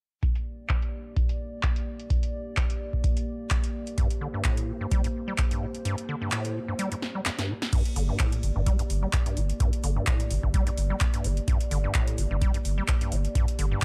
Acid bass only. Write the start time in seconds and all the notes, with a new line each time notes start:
3.98 G2
4.21 D3
4.34 G2
4.45 A2
4.68 A#2
4.81 G2
4.92 G3
5.04 G2
5.28 G3
5.38 F2
5.51 G2
5.62 A#2
5.85 G2
6.09 D3
6.22 G2
6.32 A2
6.56 A#2
6.68 G2
6.79 G3
6.92 G2
7.15 G3
7.26 F2
7.39 G2
7.49 A#2
7.73 G2
7.96 D3
8.09 G2
8.20 A2
8.43 A#2
8.56 G2
8.66 G3
8.79 G2
9.03 G3
9.13 F2
9.26 G2
9.37 A#2
9.60 G2
9.84 D3
9.96 G2
10.07 A2
10.31 A#2
10.43 G2
10.54 G3
10.67 G2
10.90 G3
11.01 F2
11.14 G2
11.24 A#2
11.48 G2
11.71 D3
11.84 G2
11.95 A2
12.18 A#2
12.31 G2
12.42 G3
12.54 G2
12.78 G3
12.88 F2
13.01 G2
13.12 A#2
13.35 G2
13.59 D3
13.71 G2